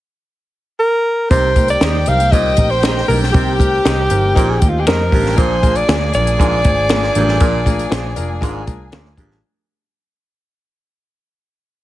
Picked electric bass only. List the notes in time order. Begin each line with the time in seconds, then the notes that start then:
1.31 C2
1.81 D#2
2.08 C2
2.32 C2
2.58 A#1
3.09 B1
3.34 C2
3.86 C2
4.11 G1
4.36 A#1
4.62 D#2
4.88 F2
5.12 A1
5.38 A#1
5.89 D2
6.15 A#1
6.40 A#1
6.65 G#1
7.16 A1
7.41 A#1
7.92 A#1
8.17 F1
8.42 G#1
8.67 C2
8.93 D2
9.18 A1